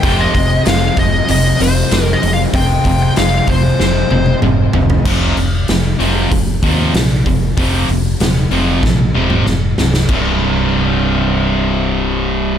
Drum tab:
CC |----------------|----------------|x---------------|----------------|
HH |o-o-o-o-o-o-o-o-|o-o-o-o---------|--o-o-o-o-o-o-o-|o-o-o-o---------|
SD |----o-------o---|----o---o-------|----o-------o---|----o---o---o-oo|
T1 |----------------|----------oo----|----------------|---------o------|
T2 |----------------|------------o---|----------------|-----------o----|
FT |----------------|--------------oo|----------------|----------------|
BD |o-o---o---------|o-o---o---------|o-------o-o---o-|o-------o-------|

CC |x---------------|
HH |----------------|
SD |----------------|
T1 |----------------|
T2 |----------------|
FT |----------------|
BD |o---------------|